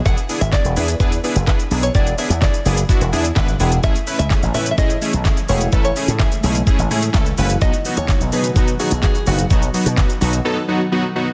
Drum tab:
HH |-xox-xox-xox-xox|-xox-xox-xox-xox|-xox-xox-xox-xox|-xox-xox-xox-xox|
SH |xxxxxxxxxxxxxxxx|xxxxxxxxxxxxxxxx|xxxxxxxxxxxxxxxx|xxxxxxxxxxxxxxxx|
CP |----x-------x---|----x-------x---|----x-------x---|----x-------x---|
SD |----o-------o---|----o-------o---|----o-------o---|----o-------o---|
BD |o---o---o---o---|o---o---o---o---|o---o---o---o---|o---o---o---o---|

HH |-xox-xox-xox-xox|-xox-xox--------|
SH |xxxxxxxxxxxxxxxx|xxxxxxxx--------|
CP |----x-------x---|----x-----------|
SD |----o-------o---|----o-----------|
BD |o---o---o---o---|o---o-----------|